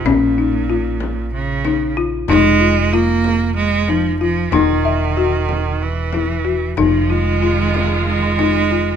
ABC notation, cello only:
X:1
M:7/8
L:1/8
Q:1/4=94
K:Fphr
V:1 name="Cello" clef=bass
B,,4 D,2 z | A,2 B,2 A, F, F, | E,4 =E,3 | F, A,3 A,3 |]